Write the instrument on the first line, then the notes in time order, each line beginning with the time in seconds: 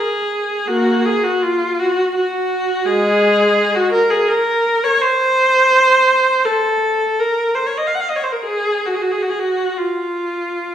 viola
Already playing: G#4
0.67 A#3 F#4
1.05 G#4
1.24 F#4
1.42 F4
1.79 F#4
2.15 F#4
2.86 G#3 G#4
3.75 F#4
3.92 A#4
4.10 G#4
4.28 A#4
4.84 C#5
5.01 C5
6.45 A4
7.19 A#4
7.55 C5
7.66 C#5
7.77 D#5
7.87 F5
7.94 F#5
8.00 F5
8.09 D#5
8.16 C#5
8.24 C5
8.32 A#4
8.42 G#4
8.86 F#4
8.95 G#4
9.02 F#4
9.11 G#4
9.22 F#4
9.30 G#4
9.39 F#4
9.77 F4